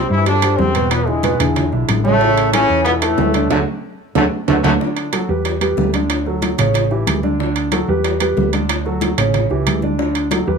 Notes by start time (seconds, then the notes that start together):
Already playing: G3 G4 C5
0.10 G2 E3 E4, high conga
0.26 D3 G3 D4 G4 C5, high bongo, high conga, high timbale
0.42 G3 G4 C5, high bongo, high timbale
0.59 E2 C3 C4, high bongo, low bongo, high conga
0.75 B2 B3 B4, high bongo, high conga, high timbale
0.91 B2 B3, high bongo, high conga, high timbale
1.07 G#2 D3 G#3 D4 E4, high bongo, high conga
1.23 B2 B3 B4, high bongo, high conga, high timbale
1.40 E2 D3 D4 E4, high conga, low conga, high timbale
1.56 high bongo, high conga, low conga, high timbale
1.72 B1 D3 D4 E4, high bongo, high conga
1.88 A1, high bongo, low bongo, high conga, high timbale
2.05 A2 C#3 A3 C#4 C#5, high bongo, high conga
2.21 C#3 C#4 C#5, high bongo, high conga
2.37 high bongo, high conga, high timbale
2.53 C#3 E3 C#4 E4 A4, high bongo, high conga, high timbale
2.69 E2, high conga
2.85 B2 E3 B3 E4 A4, high bongo, high conga, high timbale
3.02 A2 E3 A3 E4 A4, high bongo, high conga, high timbale
3.18 D2, high bongo, low bongo, high conga, low timbale
3.34 D3 D4 D5, high bongo, high conga, high timbale
3.50 D2 D3 F#3 A3 D4 F#4, low bongo, low conga, high timbale
4.15 D2 D3 F#3 A3 D4 F#4, low bongo, low conga, high timbale
4.48 D2 D3 F#3 A3 D4 F#4, low bongo, low conga, high timbale
4.64 D2 D3 F#3 A3 D4 F#4, low bongo, low conga, high timbale
4.80 D3 D4 D5, high bongo, high conga
4.97 high bongo, high conga, high timbale
5.13 F#3 F#4 A4, high bongo, high conga, high timbale
5.29 E2 G3 G4 B4, high conga
5.45 high bongo, high conga, high timbale
5.61 G3 G4 B4, high bongo, high conga, high timbale
5.77 D2, high bongo, low bongo, high conga
5.93 D3 D4 D5, high bongo, high conga, high timbale
6.10 high bongo, high timbale
6.26 F#3 F#4 A4, high bongo, high conga
6.42 high bongo, high conga, high timbale
6.58 A1 C#3 C#4 C#5, high conga, low conga, high timbale
6.74 high bongo, high conga, high timbale
6.91 E3 E4 G4, high bongo, high conga
7.07 D2, high bongo, low bongo, high conga, high timbale
7.23 D3 D4 D5, high bongo, high conga
7.39 D3 D4 D5, high bongo, high conga
7.56 high bongo, high conga, high timbale
7.72 F#3 F#4 A4, high bongo, high conga, high timbale
7.88 E2 G3 G4 B4, high conga
8.04 high bongo, high conga, high timbale
8.20 G3 G4 B4, high bongo, high conga, high timbale
8.37 D2, high bongo, low bongo, high conga
8.53 D3 D4 D5, high bongo, high conga, high timbale
8.69 high bongo, high timbale
8.85 F#3 F#4 A4, high bongo, high conga
9.01 high bongo, high conga, high timbale
9.18 A1 C#3 C#4 C#5, high conga, low conga, high timbale
9.34 high bongo, high conga, low conga, high timbale
9.50 C#2 E3 E4 G4, high bongo, high conga
9.66 D2, high bongo, low bongo, high conga, high timbale
9.82 D3 D4 D5, high bongo, high conga
9.98 D3 D4 D5, high bongo, high conga
10.15 high bongo, high conga, high timbale
10.31 F#3 F#4 A4, high bongo, high conga, high timbale
10.47 E2 G3 G4 B4, high conga